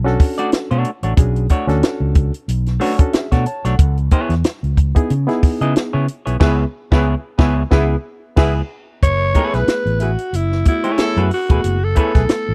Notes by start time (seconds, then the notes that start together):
Already playing: B1
0.04 C#4 D4 F#4 A4, snare
0.20 kick, open hi-hat
0.38 A3 D4 F#4 D5, closed hi-hat
0.52 snare, closed hi-hat
0.71 B2 A3 D4 F#4 C#5, closed hi-hat
0.85 closed hi-hat
1.03 A1 A3 D4 F#4 C#5, closed hi-hat
1.17 B1 C#4 D4 F#4 G#4, kick, closed hi-hat
1.36 closed hi-hat
1.49 A3 D4 F#4 C#5, kick, closed hi-hat
1.67 D2 C#4 D4 F#4 A4, snare, closed hi-hat
1.82 muted fingered electric bass stroke, snare, closed hi-hat
2.00 C#2
2.15 kick, closed hi-hat
2.34 closed hi-hat
2.48 B1, closed hi-hat
2.66 snare, closed hi-hat
2.80 A3 C#4 D4 F#4 B4 C#5, open hi-hat
2.98 C#4 D4 F#4 A4, kick, closed hi-hat
3.13 G#4 E5, snare, closed hi-hat
3.32 B2 A3 D4 F#4 A4 C#5 F#5, kick, snare, closed hi-hat
3.46 C#5 A5, closed hi-hat
3.65 B1 A3 D4 F#4 A4 C#5 F#5, snare, closed hi-hat
3.79 C#2, kick, closed hi-hat
3.97 closed hi-hat
4.11 B3 E4 G#4 C#5, kick, closed hi-hat
4.29 E2, snare, closed hi-hat
4.44 muted fingered electric bass stroke, snare, closed hi-hat
4.63 C#2, closed hi-hat
4.77 kick, closed hi-hat
4.95 B3 D#4 E4 G#4, kick, closed hi-hat
5.10 C#3, closed hi-hat
5.27 B3 D#4 E4 G#4, snare, closed hi-hat
5.43 muted fingered electric bass stroke, kick, open hi-hat
5.61 C#3 B3 E4 G#4 D#5, closed hi-hat
5.76 snare, closed hi-hat
5.93 C#3 B3 E4 G#4 C#5
6.08 closed hi-hat
6.26 B1 B3 E4 G#4 C#5, closed hi-hat
6.40 C#2 B3 E4 G#4 B4 C#5, kick, snare, crash
6.92 C#2 B3 E4 G#4 B4 C#5, kick, snare
7.38 C#2 B3 E4 G#4 B4 C#5, kick, snare
7.71 C#2 B3 E4 G#4 B4, kick, snare
8.36 C#2 B3 E4 G#4 B4, kick, snare, crash
9.03 F#1 C#5, kick, closed hi-hat
9.34 A3 B3 C#4 E4 G#4 A4 B4 C#5, kick, closed hi-hat
9.54 B1 E4 G#4 B4, snare, closed hi-hat
9.68 snare, closed hi-hat
9.86 A1, closed hi-hat
10.00 E4 F#4 G#4 B4, closed hi-hat
10.18 closed hi-hat
10.33 F#1 E4, closed hi-hat
10.52 snare
10.65 A3 B3 E4 F#4, kick, closed hi-hat
10.84 A3 E4 G#4 C#5, closed hi-hat
10.98 A3 B3 C#4 E4 G#4 A4, snare, closed hi-hat
11.17 F#2 A3 E4 F#4 G#4 B4, closed hi-hat
11.31 F#4, open hi-hat
11.49 E1 A3 B3 E4 G#4 B4, kick, closed hi-hat
11.64 F#1, closed hi-hat
11.84 A4
11.95 A3 B3 C#4 E4 G#4 A4 B4 C#5, kick, closed hi-hat
12.14 B1 E4 G#4 B4, kick, snare, closed hi-hat
12.29 snare, closed hi-hat
12.49 A1